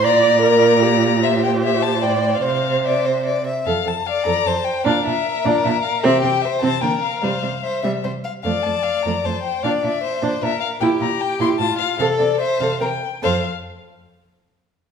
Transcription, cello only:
0.06 2.04 A#2 medium
2.03 2.43 A2 medium
2.43 3.44 C3 soft
3.66 3.74 F2 medium
3.87 3.95 F2 soft
4.26 4.34 F2 medium
4.46 4.54 F2 soft
4.86 4.94 A#2 medium
5.06 5.14 A#2 soft
5.45 5.53 A#2 medium
5.65 5.73 A#2 medium
6.05 6.12 C3 medium
6.24 6.32 C3 soft
6.63 6.71 C3 medium
6.82 6.90 D3 soft
7.23 7.31 C3 medium
7.43 7.51 C3 soft
7.84 7.92 C3 soft
8.05 8.13 C3 soft
8.44 8.52 F2 medium
8.65 8.73 F2 soft
9.05 9.13 F2 medium
9.25 9.33 F2 soft
9.64 9.72 A#2 medium
9.84 9.91 A#2 soft
10.22 10.30 A#2 medium
10.42 10.50 A#2 soft
10.81 10.89 A#2 medium
11.01 11.09 A#2 soft
11.40 11.48 A#2 medium
11.60 11.68 A2 medium
11.99 12.07 C3 medium
12.20 12.28 C3 soft
12.60 12.68 C3 medium
12.81 12.89 C3 soft
13.23 13.45 F2 medium

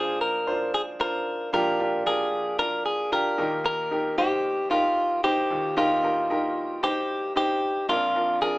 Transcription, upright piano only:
0.00 1.49 A#2 medium
0.00 1.49 F3 medium
0.00 0.47 D4 medium
0.00 0.47 F4 medium
0.00 3.40 G#4 medium
0.00 2.06 A#4 medium
0.00 0.42 C5 medium
0.47 0.95 D4 medium
0.47 0.95 F4 medium
0.47 0.95 C5 medium
1.00 1.48 D4 medium
1.00 1.48 F4 medium
1.00 1.49 C5 medium
1.53 3.35 A#2 medium
1.53 3.35 F3 medium
1.53 1.77 D4 medium
1.53 1.77 F4 medium
1.53 1.77 G4 medium
1.79 2.04 D4 medium
1.79 2.04 F4 medium
1.79 2.04 G4 medium
2.06 2.54 D4 medium
2.06 2.54 F4 medium
2.06 2.54 A#4 medium
2.59 3.07 D4 medium
2.59 3.07 F4 medium
2.59 3.08 A#4 medium
3.12 3.38 D4 medium
3.12 3.38 F4 medium
3.12 3.37 G4 medium
3.38 5.46 D#2 medium
3.38 5.46 A#2 medium
3.38 3.87 D#4 medium
3.38 3.87 G4 medium
3.38 3.87 A#4 medium
3.91 4.15 D#4 medium
3.91 4.16 G4 medium
3.91 4.16 A#4 medium
4.18 4.66 D#4 medium
4.18 4.66 G4 medium
4.18 4.66 C5 medium
4.71 5.19 D#4 medium
4.71 5.19 G4 medium
4.71 5.19 A#4 medium
5.24 5.72 D#4 medium
5.24 5.72 G4 medium
5.24 5.73 C5 medium
5.51 7.59 D#2 medium
5.51 7.59 A#2 medium
5.77 6.01 D#4 medium
5.77 6.01 G4 medium
5.77 6.01 A#4 medium
6.03 6.28 D#4 medium
6.03 6.28 G4 medium
6.03 6.28 A#4 medium
6.30 6.78 D#4 medium
6.30 6.79 G4 medium
6.30 6.79 A#4 medium
6.83 7.31 D#4 medium
6.83 7.31 G4 medium
6.83 7.32 C5 medium
7.36 7.84 D#4 medium
7.36 7.84 G4 medium
7.36 7.85 C5 medium
7.88 8.58 A#1 medium
7.88 8.58 F2 medium
7.88 8.13 D4 medium
7.88 8.13 F4 medium
7.88 8.13 A#4 medium
8.15 8.40 D4 medium
8.15 8.40 F4 medium
8.15 8.40 A#4 medium
8.41 8.58 D4 medium
8.41 8.58 F4 medium
8.41 8.58 A#4 medium

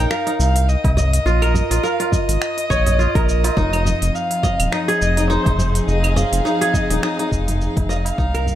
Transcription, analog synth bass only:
0.39 0.76 C2 loud
0.84 1.19 C2 medium
1.26 1.63 A#1 loud
1.71 1.80 A#1 medium
2.28 2.37 G#1 medium
2.70 3.07 A#1 medium
3.15 3.50 A#1 medium
3.57 3.94 F1 loud
4.02 4.10 F1 medium
4.59 4.68 D#1 medium
5.01 5.38 F1 medium
5.46 5.81 F1 medium
5.88 6.24 F1 loud
6.32 6.41 F1 medium
6.90 6.99 D#1 medium
7.32 7.68 F1 medium
7.77 8.12 F1 medium
8.18 8.55 C2 loud

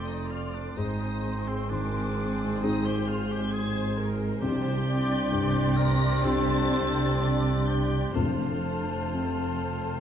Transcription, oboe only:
0.08 0.33 D#4 medium
0.31 0.56 F4 medium
0.54 0.79 D4 medium
0.77 1.49 D#4 medium
1.48 1.72 C4 medium
1.70 2.64 D4 medium
2.63 2.87 D#4 medium
2.86 3.10 G4 medium
3.08 3.33 F4 medium
3.31 3.54 G4 medium
3.53 3.98 G#4 loud
4.42 5.78 G4 loud
5.76 6.26 A#4 loud
6.25 7.66 A4 loud
7.66 8.17 G4 medium
8.15 10.00 F4 medium

